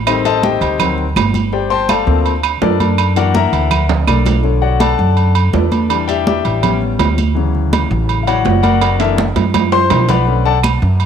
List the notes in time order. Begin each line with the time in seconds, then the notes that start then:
Already playing: A1
0.06 D#3 G3 C4 D#4 A4 C5 D#5, high conga, low agogo, claves
0.25 A4 C5 D#5 A5, high conga, low agogo
0.43 G4 C5 D#5 G5, high conga, low timbale
0.61 D2, high conga, low agogo
0.79 D#3 F#3 C4, high conga, low conga, low agogo, claves
0.98 high conga
1.16 G1, high conga, low timbale, low agogo, claves
1.34 high conga, low agogo
1.53 G4 C5 D5 G5, high conga
1.70 C5 G5 A5 C6, high conga
1.89 A4 D5 F5 A5, high conga, low timbale, low agogo, claves
2.06 D2 F3 A3 A#3 C4, high conga
2.26 high conga, low agogo
2.43 high conga, low agogo, claves
2.62 F#2 D4 A4 A#4 D5, high conga, low timbale
2.80 high conga, low agogo
2.98 high conga, low agogo, claves
3.16 E3 A#3 D4 F#4 A#4 D5 F#5, high conga, low agogo
3.34 A#4 E5 F#5 A#5, high conga, low timbale
3.53 D2, high conga, low agogo
3.71 high conga, low conga, low agogo, claves
3.89 high conga, low conga, high timbale
4.07 B1 D4 A4 A#4 D5, high conga, low agogo, claves
4.26 high conga, low timbale, low agogo
4.43 D3 A3 C#5, high conga
4.62 F#4 C#5 D5 F#5, high conga
4.80 A4 D5 F#5 A5, high conga, low timbale, low agogo
4.99 F#2, high conga
5.17 high conga, low agogo
5.35 high conga, low agogo
5.53 E2 D4 A4 B4 D5, high conga, low timbale
5.72 high conga, low agogo
5.89 E3 G3 D4, high conga, low agogo
6.08 G4 D5 E5 G5, high conga, low agogo
6.27 G4 D5 E5 G5, high conga, low timbale
6.45 A1, high conga, low agogo
6.62 G3 B3 C#4, high conga, low conga, low agogo
6.82 high conga
6.99 D2, high conga, low timbale, low agogo
7.18 high conga, low agogo
7.35 C#3 E3 F#3, high conga
7.55 high conga
7.73 high conga, low timbale, low agogo
7.91 A1, high conga
8.09 high conga, low agogo
8.23 F5, high conga
8.27 E3 F#3 C#4 F#4 C#5 D5 F#5, low agogo
8.45 F#1, high conga, low timbale
8.63 F#4 A#4 D5 F#5, high conga, low agogo
8.81 high conga, high timbale, low agogo
8.99 E3 A#3 D4 E4 A4 A#4 E5, high conga, high timbale, low agogo
9.18 high conga, high timbale
9.36 F#2, high conga, low timbale, low agogo
9.54 high conga, low timbale, low agogo
9.72 C5 C6, low timbale
9.90 B1 E3 A#3 D4, low conga, low timbale, low agogo
10.09 B4 D5 F#5 B5, low conga, low timbale, low agogo
10.26 D3 A3 C#4, high conga
10.45 A4 D5 F#5 A5, high conga
10.63 high conga, low timbale, low agogo, claves
10.82 F#2, high conga
11.00 high conga, low agogo